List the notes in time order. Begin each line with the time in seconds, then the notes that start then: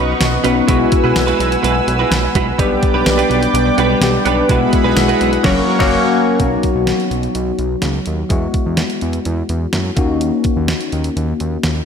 Already playing: B1 B3 C#4 D#4 F#4 B4 D#5 F#5 C#6
0.08 F#3 C#4 D#4 B4
0.20 B1, muted clean electric guitar stroke, snare, closed hi-hat, tambourine
0.32 muted clean electric guitar stroke
0.44 B1 F#3 B3 C#4 D#4 F#4 B4, closed hi-hat
0.56 muted clean electric guitar stroke
0.67 B1 G#3 B3 E4 F#4 B4 G#5 E6, kick, closed hi-hat
0.80 muted clean electric guitar stroke
0.92 muted clean electric guitar stroke, kick, closed hi-hat
1.04 B1 G#3 E4 F#4 B4
1.16 B1, muted clean electric guitar stroke, snare, closed hi-hat, tambourine
1.27 G#3 E4 F#4 B4, closed hi-hat
1.39 B1 G#3 E4 F#4 B4, closed hi-hat
1.51 muted clean electric guitar stroke, closed hi-hat
1.63 B1 G#3 E4 F#4 B4, closed hi-hat
1.75 muted clean electric guitar stroke
1.87 B1, muted clean electric guitar stroke, closed hi-hat
1.99 G#3 E4 F#4 B4
2.11 B1, muted clean electric guitar stroke, snare, closed hi-hat, tambourine
2.24 muted clean electric guitar stroke
2.35 B1 G#3 E4 F#4 B4, kick, closed hi-hat
2.47 muted clean electric guitar stroke
2.58 B1 G3 B3 D4 G4 B4 D5 G5 D6, kick, closed hi-hat
2.71 muted clean electric guitar stroke
2.82 muted clean electric guitar stroke, kick, closed hi-hat
2.94 B1 B3 D4 G4 B4
3.06 B1, muted clean electric guitar stroke, snare, closed hi-hat, tambourine
3.18 B3 D4 G4 B4, closed hi-hat
3.30 B1 B3 D4 G4 B4, closed hi-hat
3.42 muted clean electric guitar stroke, closed hi-hat
3.54 B1, muted clean electric guitar stroke, closed hi-hat
3.66 muted clean electric guitar stroke
3.78 B1 B3 D4 G4 B4, closed hi-hat
3.90 B3 D4 G4 B4
4.01 B1 B3 G4, muted clean electric guitar stroke, snare, closed hi-hat, tambourine
4.14 muted clean electric guitar stroke
4.25 B1 B3 D4 G4 B4, closed hi-hat
4.38 muted clean electric guitar stroke
4.49 B1 G#3 B3 E4 F#4 G#4 B4 E5 F#5 B5, kick, closed hi-hat
4.61 muted clean electric guitar stroke
4.73 muted clean electric guitar stroke, kick, closed hi-hat
4.84 B1 G#3 B3 F#4 B4
4.96 B1, muted clean electric guitar stroke, snare, closed hi-hat, tambourine
5.08 G#3 B3 F#4 B4, closed hi-hat
5.21 B1 G#3 B3 F#4 B4, closed hi-hat
5.33 muted clean electric guitar stroke, closed hi-hat
5.43 F#1 F#3 A#3 C#4 F#4 A#4 C#5 C#6, kick, snare, crash
5.79 F#1 F#3 A#3 C#4 F#4 A#4 C#5, kick, snare, crash
6.39 B1 F#3 B3 C#4 F#4, kick, closed hi-hat
6.46 D#4
6.63 kick, closed hi-hat
6.75 B1
6.87 snare, closed hi-hat
7.00 closed hi-hat
7.11 B1, closed hi-hat
7.23 closed hi-hat
7.35 B1, closed hi-hat
7.59 B1, closed hi-hat
7.82 C#2, snare, closed hi-hat
8.06 D#2, closed hi-hat
8.29 E2 G#3 B3 E4 F#4, kick, closed hi-hat
8.54 kick, closed hi-hat
8.66 E2
8.77 snare, closed hi-hat
8.90 closed hi-hat
9.01 E2, closed hi-hat
9.13 closed hi-hat
9.25 E2, closed hi-hat
9.49 E2, closed hi-hat
9.73 F#2, snare, closed hi-hat
9.96 D#2 A#3 C#4 D#4 F#4, kick, closed hi-hat
10.21 closed hi-hat
10.44 kick, closed hi-hat
10.57 D#2
10.68 snare, closed hi-hat
10.81 closed hi-hat
10.92 D#2, closed hi-hat
11.04 closed hi-hat
11.16 D#2, closed hi-hat
11.40 D#2, closed hi-hat
11.63 D#2, snare, closed hi-hat